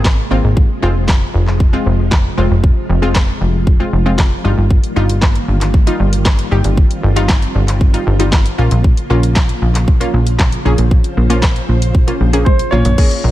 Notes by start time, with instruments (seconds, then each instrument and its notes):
Already playing: analog synth bass G#1, string machine C3 G#3 A#3 F4, synth pluck A#3 C4 G#4
0.04 kick, snare, clap
0.31 analog synth bass G#1, synth pluck A#3 C4 F4
0.44 analog synth bass G#1
0.57 string machine C3 F3, kick
0.82 analog synth bass F1, synth pluck G#3 C4 F4
1.08 kick, snare, clap
1.34 analog synth bass F1
1.47 clap
1.60 kick
1.73 synth pluck G#3 C4 F4
1.86 analog synth bass F1
2.11 kick, snare, clap
2.38 analog synth bass F1, synth pluck G#3 C4 F4
2.51 analog synth bass F1
2.64 kick
2.89 analog synth bass F1
3.02 synth pluck G#3 C4 F4
3.15 kick, snare, clap
3.41 analog synth bass F1
3.67 kick
3.80 synth pluck G#3 C4 F4
3.93 analog synth bass F1
4.06 synth pluck G#3 C4 F4
4.18 kick, snare, clap
4.44 analog synth bass G1, string machine D#3 G3 A#3, synth pluck G3 D#4 F4
4.58 analog synth bass G1
4.71 kick
4.84 closed hi-hat
4.96 analog synth bass G1, synth pluck G3 D#4 F4
5.09 closed hi-hat
5.22 kick, snare, clap
5.35 closed hi-hat
5.48 analog synth bass G1
5.61 clap, closed hi-hat
5.74 kick
5.87 synth pluck G3 D#4 F4, closed hi-hat
6.00 analog synth bass G1
6.13 closed hi-hat
6.25 kick, snare, clap
6.39 closed hi-hat
6.51 analog synth bass G1, synth pluck G3 D#4 G4, string machine C4
6.64 analog synth bass G1, closed hi-hat
6.77 kick
6.91 closed hi-hat
7.03 analog synth bass G1
7.16 synth pluck G3 D#4 F4, closed hi-hat
7.29 kick, snare, clap
7.42 closed hi-hat
7.55 analog synth bass G1
7.68 clap, closed hi-hat
7.81 kick
7.94 synth pluck G3 D#4 F4, closed hi-hat
8.07 analog synth bass G1
8.19 synth pluck G3 D#4 F4, closed hi-hat
8.32 kick, snare, clap
8.46 closed hi-hat
8.58 analog synth bass A#1, string machine C#3 F3 A#3, synth pluck A#3 C#4 F4
8.71 analog synth bass A#1, closed hi-hat
8.84 kick
8.97 closed hi-hat
9.10 analog synth bass A#1, synth pluck A#3 C#4 F4
9.23 closed hi-hat
9.35 kick, snare, clap
9.49 closed hi-hat
9.62 analog synth bass A#1
9.75 clap, closed hi-hat
9.88 kick
10.00 synth pluck A#3 C#4 F4, closed hi-hat
10.14 analog synth bass A#1
10.27 closed hi-hat
10.39 kick, snare, clap
10.52 closed hi-hat
10.65 analog synth bass A#1, synth pluck A#3 C#4 G#4, string machine C5
10.78 analog synth bass A#1, closed hi-hat
10.91 kick
11.04 closed hi-hat
11.17 analog synth bass A#1
11.30 synth pluck A#3 C#4 F4, closed hi-hat
11.42 kick, snare, clap
11.56 closed hi-hat
11.69 analog synth bass A#1
11.82 closed hi-hat
11.95 kick
12.07 synth pluck A#3 C#4 F4, closed hi-hat
12.21 analog synth bass A#1
12.33 synth pluck A#3 C#4 G#4, closed hi-hat
12.45 grand piano C5, kick, high tom
12.59 closed hi-hat
12.71 analog synth bass A#1, synth pluck A#3 C#4 F4, grand piano C#5, mid tom
12.85 analog synth bass A#1, closed hi-hat, floor tom
12.98 string machine C#3 G#3 A#3 F4, synth pluck A#3 C#4 G#4, kick, crash
13.11 closed hi-hat
13.24 analog synth bass A#1